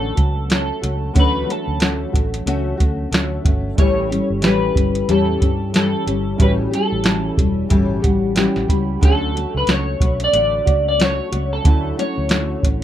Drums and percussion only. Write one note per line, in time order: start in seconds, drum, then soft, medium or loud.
0.17 kick medium
0.17 closed hi-hat medium
0.50 snare loud
0.50 closed hi-hat medium
0.84 closed hi-hat medium
1.16 kick medium
1.16 closed hi-hat medium
1.50 closed hi-hat soft
1.80 snare loud
1.80 closed hi-hat medium
2.14 kick medium
2.14 closed hi-hat medium
2.34 closed hi-hat soft
2.47 closed hi-hat medium
2.80 kick medium
2.80 closed hi-hat medium
3.13 snare loud
3.13 closed hi-hat medium
3.45 kick medium
3.45 closed hi-hat medium
3.78 kick loud
3.78 closed hi-hat medium
4.12 closed hi-hat medium
4.42 snare loud
4.42 closed hi-hat medium
4.76 kick medium
4.76 closed hi-hat medium
4.95 closed hi-hat medium
5.09 closed hi-hat medium
5.42 kick medium
5.42 closed hi-hat medium
5.74 snare loud
5.74 closed hi-hat medium
6.08 closed hi-hat medium
6.40 kick loud
6.40 closed hi-hat medium
6.74 closed hi-hat medium
7.04 snare loud
7.04 closed hi-hat medium
7.38 kick medium
7.38 closed hi-hat medium
7.70 kick medium
7.70 closed hi-hat medium
8.04 kick medium
8.04 closed hi-hat medium
8.36 snare loud
8.36 closed hi-hat medium
8.56 snare soft
8.69 kick medium
8.69 closed hi-hat medium
9.02 kick loud
9.02 closed hi-hat medium
9.37 closed hi-hat medium
9.67 snare loud
9.67 closed hi-hat medium
10.00 kick medium
10.00 closed hi-hat medium
10.20 closed hi-hat medium
10.34 closed hi-hat medium
10.67 kick medium
10.67 closed hi-hat medium
11.00 snare loud
11.00 closed hi-hat medium
11.33 closed hi-hat medium
11.65 kick loud
11.65 closed hi-hat medium
11.99 closed hi-hat medium
12.29 snare loud
12.29 closed hi-hat medium
12.63 kick medium
12.63 closed hi-hat medium